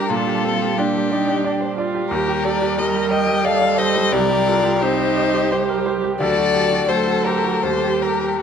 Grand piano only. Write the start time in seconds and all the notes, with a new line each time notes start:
Already playing: G2 D4 G4 A4 C5 D5
0.10 A#2
0.27 G4
0.45 A4
0.62 G4
0.78 D4
0.95 G4
1.11 D5
1.28 G4
1.44 D5
1.61 C5
1.78 D5
1.95 G4
2.11 D#2
2.28 G4
2.45 A4
2.62 G4
2.78 G3
2.96 G4
3.12 D#5
3.27 G4
3.45 D#5
3.62 D5
3.78 G4
3.95 G3
4.12 C2
4.29 G4
4.47 A4
4.64 G4
4.81 C4
4.99 G4
5.17 D#5
5.34 G4
5.52 C5
5.69 A#4
5.86 C5
6.04 G4
6.20 D2
6.37 F#4
6.54 G4
6.71 F#4
6.89 A3
7.07 F#4
7.25 C5
7.44 F#4
7.63 D#2
7.83 G4
8.03 A4
8.22 G4